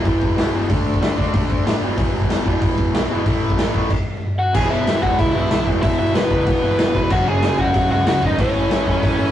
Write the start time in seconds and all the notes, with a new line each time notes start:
0.05 E1 E2 B2 E3, kick, open hi-hat
0.22 E1, kick
0.36 B1 E2 B2 E3, snare, open hi-hat
0.53 E1 E2 B2 E3
0.69 D2 D3 A3 D4, kick, open hi-hat
0.86 D2
0.94 kick
1.01 D2 D3 A3 D4, snare, open hi-hat
1.17 D2 D3 A3 D4, kick
1.33 D2 D3 A3 D4, kick, open hi-hat
1.50 D2, kick
1.65 A2 D3 A3 D4, snare, open hi-hat
1.81 E1 E2 B2 E3
1.97 E1 E2 B2 E3, kick, open hi-hat
2.13 E1
2.22 kick
2.29 E1 E2 B2 E3, snare, open hi-hat
2.45 E1 E2 B2 E3, kick
2.61 E1 E2 B2 E3, kick, open hi-hat
2.78 E1, kick
2.93 B1 E2 B2 E3, snare, open hi-hat
3.09 E1 E2 B2 E3
3.25 A1 A2 E3 A3, kick, open hi-hat
3.42 A1
3.50 kick
3.58 A1 A2 E3 A3, snare, open hi-hat
3.74 A1 A2 E3 A3, kick
3.90 kick, crash
4.39 F#4 F#5
4.54 E1 E2 B2 E3 G#4 G#5, kick, crash
4.70 E1 E2 B2 E3 E4 E5
4.86 E1 E2 B2 E3, snare, open hi-hat
5.02 E1 E2 B2 E3 F#4 F#5, kick
5.18 C#2 E2 B2 E3 E4 E5, kick, open hi-hat
5.35 B1 E2 B2 E3
5.50 B1 E2 B2 E3, snare, open hi-hat
5.67 E1 E2 B2 E3, kick
5.82 E1 E2 B2 E3 E4 E5, kick, open hi-hat
5.98 E1 E2 B2 E3 E4 E5
6.14 E1 E2 B2 E3 B3 B4, snare, open hi-hat
6.30 C#2 E2 B2 E3, kick
6.46 E1 E2 B2 E3, kick, open hi-hat
6.62 E1 E2 B2 E3
6.78 E1 E2 B2 E3, snare, open hi-hat
6.95 E1 E2 B2 E3 B4 B5, kick
7.10 F#1 F#2 C#3 F#3 F#4 F#5, kick, crash
7.27 F#1 F#2 C#3 F#3 G#4 G#5
7.42 F#1 F#2 C#3 F#3, snare, open hi-hat
7.58 F#1 F#2 C#3 F#3 F#4 F#5, kick
7.74 E1 F#2 C#3 F#3, kick, open hi-hat
7.90 C#2 F#2 C#3 F#3 F#4 F#5
8.05 C#2 F#2 C#3 F#3 F#4 F#5, snare, open hi-hat
8.22 G#1 F#2 C#3 F#3 D#4 D#5, kick
8.39 A1 A2 E3 A3 C#4 C#5, kick, open hi-hat
8.55 A1 A2 E3 A3
8.70 A1 A2 E3 A3, snare, open hi-hat
8.87 F#2 A2 E3 A3, kick
9.03 A1 A2 E3 A3, kick, open hi-hat
9.18 A1 A2 E3 A3